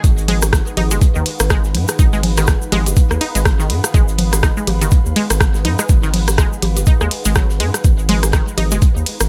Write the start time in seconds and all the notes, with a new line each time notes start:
Already playing: D#4 G#4 F#5 C#6
0.04 G#1 B3 B4, kick, closed hi-hat, shaker
0.14 F5, shaker
0.18 closed hi-hat
0.28 G#3 B5, closed hi-hat, ride, low conga
0.42 cross-stick, closed hi-hat, low bongo, shaker
0.53 kick, cross-stick, snare, closed hi-hat, shaker
0.67 shaker
0.77 G#1 D#4, closed hi-hat, ride, low bongo, low conga
0.91 F#1 G#3, closed hi-hat, low bongo, shaker
1.01 kick, closed hi-hat, shaker
1.15 D#2 D#3, shaker
1.26 closed hi-hat, ride
1.40 G#1, cross-stick, closed hi-hat, shaker
1.50 G#3, kick, cross-stick, snare, closed hi-hat, shaker
1.64 snare, shaker
1.75 G#2, closed hi-hat, ride, low conga
1.88 cross-stick, closed hi-hat, shaker
1.99 G#1 D#4, kick, closed hi-hat, shaker
2.13 G#3, snare, shaker
2.23 snare, closed hi-hat, open hi-hat, ride, low conga
2.37 D#3, cross-stick, closed hi-hat, low bongo, shaker
2.47 kick, cross-stick, snare, closed hi-hat, shaker
2.62 shaker
2.72 G#1 G#3, closed hi-hat, ride, low bongo, low conga
2.86 F#1, closed hi-hat, low bongo, shaker
2.96 kick, closed hi-hat, shaker
3.11 D#2, cross-stick, shaker
3.21 D#4, closed hi-hat, ride
3.35 G#1 G#3, snare, closed hi-hat, shaker
3.45 kick, cross-stick, snare, closed hi-hat, shaker
3.59 D#3, snare, shaker
3.70 G#2, closed hi-hat, ride
3.84 cross-stick, closed hi-hat, shaker
3.94 G#1 G#3, kick, closed hi-hat, shaker
4.08 closed hi-hat, shaker
4.18 closed hi-hat, ride, low conga
4.33 cross-stick, closed hi-hat, low bongo, shaker
4.43 D#4, kick, cross-stick, snare, closed hi-hat, shaker
4.57 G#3, shaker
4.67 G#1, closed hi-hat, ride, low bongo, low conga
4.82 F#1 D#3, closed hi-hat, low bongo, shaker
4.91 kick, closed hi-hat, shaker
5.06 D#2, shaker
5.16 G#3, closed hi-hat, ride
5.30 G#1, cross-stick, closed hi-hat, shaker
5.40 kick, cross-stick, snare, closed hi-hat, shaker
5.54 snare, shaker
5.65 G#2 D#4, closed hi-hat, ride, low conga
5.79 G#3, cross-stick, closed hi-hat, shaker
5.89 G#1, kick, closed hi-hat, shaker
6.03 D#3, snare, shaker
6.13 snare, closed hi-hat, open hi-hat, ride, low conga
6.28 cross-stick, closed hi-hat, low bongo, shaker
6.38 G#3, kick, cross-stick, snare, closed hi-hat, shaker
6.53 shaker
6.62 G#1, closed hi-hat, ride, low bongo, low conga
6.77 F#1, closed hi-hat, low bongo, shaker
6.86 D#4, kick, closed hi-hat, shaker
7.01 D#2 G#3, cross-stick, shaker
7.11 closed hi-hat, ride
7.25 G#1 G#3, snare, closed hi-hat, shaker
7.35 F#3, kick, cross-stick, snare, closed hi-hat, shaker
7.50 snare, shaker
7.60 G#2 G#3, closed hi-hat, ride
7.74 cross-stick, closed hi-hat, shaker
7.84 G#1, kick, closed hi-hat, shaker
7.98 closed hi-hat, shaker
8.09 G#3 A#5, closed hi-hat, ride, low conga
8.23 cross-stick, closed hi-hat, low bongo, shaker
8.32 D#3, kick, cross-stick, snare, closed hi-hat, shaker
8.48 shaker
8.57 G#1 D#4, closed hi-hat, ride, low bongo, low conga
8.71 F#1 G#3, closed hi-hat, low bongo, shaker
8.82 kick, closed hi-hat, shaker
8.96 D#2, shaker
9.06 closed hi-hat, ride
9.20 G#1, cross-stick, closed hi-hat, shaker